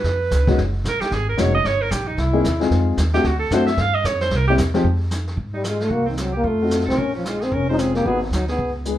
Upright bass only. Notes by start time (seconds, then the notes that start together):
0.04 F2
0.31 C#2
0.58 F#1
0.84 A#1
1.00 muted upright bass stroke
1.11 G#1
1.38 F1
1.64 G1
1.91 A#1
2.17 C2
2.44 D#2
2.71 F2
2.97 D#2
3.24 D2
3.50 F#2
3.77 G2
4.04 F2
4.31 C2
4.58 E2
4.84 F2
5.37 G#2
5.90 C2
6.43 F2
6.87 C2
6.98 A#1
7.52 F1
8.05 G#1
8.30 D2
8.58 C#2